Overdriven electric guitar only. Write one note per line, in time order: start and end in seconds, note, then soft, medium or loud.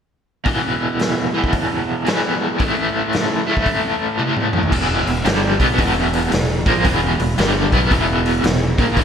0.45 1.32 E2 medium
0.45 1.33 B2 medium
0.45 1.34 E3 medium
1.34 2.04 E2 medium
1.34 2.06 B2 medium
1.34 2.09 E3 medium
2.05 2.58 E2 medium
2.05 2.58 B2 medium
2.05 2.60 E3 medium
2.59 3.45 A2 medium
2.59 3.46 E3 medium
2.59 3.46 A3 medium
3.47 4.17 A2 medium
3.47 4.19 E3 medium
3.47 4.18 A3 medium
4.18 4.71 A2 medium
4.18 4.72 E3 medium
4.18 4.73 A3 medium
4.72 5.06 E2 medium
4.72 5.06 B2 medium
4.72 5.07 E3 medium
5.07 5.22 E2 medium
5.07 5.22 B2 medium
5.25 5.59 G2 medium
5.25 5.59 D3 medium
5.25 5.60 G3 medium
5.60 5.77 B2 medium
5.60 5.78 F#3 medium
5.60 5.79 B3 medium
5.78 6.31 E2 medium
5.78 6.31 B2 medium
5.78 6.31 E3 medium
6.32 6.60 E2 medium
6.32 6.60 B2 medium
6.66 6.84 A#2 medium
6.66 6.85 F3 medium
6.66 6.85 A#3 medium
6.85 7.18 E2 medium
6.85 7.19 B2 medium
6.85 7.19 E3 medium
7.20 7.35 E2 medium
7.20 7.35 B2 medium
7.38 7.71 G2 medium
7.38 7.72 D3 loud
7.38 7.72 G3 loud
7.73 7.90 B2 medium
7.73 7.91 F#3 medium
7.73 7.91 B3 loud
7.91 8.42 E2 medium
7.91 8.43 B2 medium
7.91 8.44 E3 medium
8.44 8.72 E2 medium
8.44 8.72 B2 medium
8.78 8.96 A#2 medium
8.78 8.97 F3 medium
8.78 8.97 A#3 medium
8.97 9.04 E2 medium
8.97 9.04 B2 medium
8.97 9.04 E3 medium